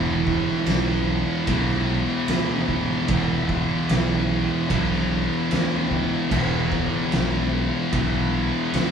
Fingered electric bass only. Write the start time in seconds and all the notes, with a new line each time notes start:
Already playing: E1
0.67 B1
1.48 B1
2.28 D2
3.09 E1
3.90 B1
4.70 B1
5.51 D2
6.31 E1
7.13 B1
7.93 B1
8.74 D2